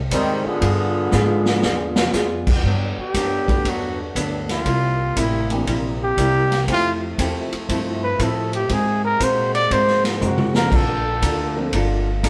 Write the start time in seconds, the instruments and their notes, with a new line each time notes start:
0.11 upright bass D#2, hollow-body jazz guitar G#2 G3 C4 D#4, trombone section D#3 G3 G#3 C4, kick, hi-hat pedal, ride
0.45 trombone section D3 B3 F4 G#4, muted upright bass stroke
0.61 upright bass G2, hollow-body jazz guitar G3 B3 F4 G#4, kick, ride
1.12 upright bass G#2, hollow-body jazz guitar G3 B3 F4 G#4, snare, hi-hat pedal
1.46 snare
1.62 upright bass E2, hollow-body jazz guitar G3 B3 F4 G#4, snare
1.96 snare
2.13 upright bass F2, hollow-body jazz guitar G3 B3 F4 G#4, snare, hi-hat pedal
2.47 kick, crash
2.63 upright bass G2, hollow-body jazz guitar G2 F#3 B3 D4, trombone section D3 B3 D4 G4, kick
2.98 trumpet G4, muted upright bass stroke
3.14 upright bass F#2, hollow-body jazz guitar G2 F#3 B3 D4, kick, snare, hi-hat pedal, ride
3.48 grand piano G3 A3 B3 D4 F#4, kick, ride
3.65 upright bass E2, hollow-body jazz guitar G2 F#3 B3 D4, kick, ride
3.69 trumpet F#4
4.15 upright bass D2, hollow-body jazz guitar G2 F#3 B3 D4, kick, hi-hat pedal, ride
4.49 trumpet F4, snare, ride
4.65 upright bass C2, hollow-body jazz guitar C3 G3 A#3 E4, trombone section C3 A#3 C4, kick, ride
5.16 upright bass A1, hollow-body jazz guitar C3 G3 A#3 E4, trumpet E4, kick, hi-hat pedal, ride
5.50 grand piano E3 A#3 C4 D4 G4, ride
5.67 upright bass A#1, hollow-body jazz guitar C3 G3 A#3 E4, kick, ride
6.04 trumpet G4
6.17 upright bass C2, hollow-body jazz guitar C3 G3 A#3 E4, kick, hi-hat pedal, ride
6.52 snare, ride
6.67 upright bass F2, trombone section F3 A3 E4, hollow-body jazz guitar F3 A3 C4 E4, grand piano F3 A3 C4 E4 G4, kick, ride
6.73 trumpet F4
7.18 upright bass E2, hollow-body jazz guitar F3 A3 C4 E4, grand piano F3 A3 C4 E4 G4, kick, hi-hat pedal, ride
7.52 muted upright bass stroke, ride
7.69 upright bass G2, hollow-body jazz guitar F3 A3 C4 E4, kick, ride
8.04 trumpet B4
8.19 upright bass A2, hollow-body jazz guitar F3 A3 C4 E4, kick, hi-hat pedal, ride
8.23 trumpet A4
8.53 trumpet G4, ride
8.69 upright bass G#2, hollow-body jazz guitar G#3 C4 F#4 A#4, trombone section G#3 A#3 F#4, kick, ride
8.73 trumpet G#4
9.05 trumpet A#4
9.20 upright bass A#2, hollow-body jazz guitar G#3 C4 F#4 A#4, trumpet C5, kick, hi-hat pedal, ride
9.55 trumpet D5, ride
9.70 upright bass G#2, hollow-body jazz guitar G#3 C4 F#4 A#4, trumpet C5, kick, ride
9.88 snare
10.04 trumpet D#4, snare, ride
10.21 upright bass F#2, hollow-body jazz guitar G#3 C4 F#4 A#4, hi-hat pedal, mid tom
10.25 trumpet F#4
10.38 mid tom
10.54 grand piano F3 A#3 C4 D4 A4, trumpet A#4, snare
10.71 upright bass A#1, trombone section D3 A3 F4, hollow-body jazz guitar A#3 D4 F4 A4, kick, crash
10.76 trumpet A4
11.22 upright bass D2, hollow-body jazz guitar A#3 D4 F4 A4, kick, hi-hat pedal, ride
11.56 grand piano F3 A#3 C4 D4 A4
11.73 upright bass G1, hollow-body jazz guitar A#3 D4 F4 A4, kick, ride
12.23 upright bass A1, hollow-body jazz guitar A#3 D4 F4 A4, kick, hi-hat pedal, ride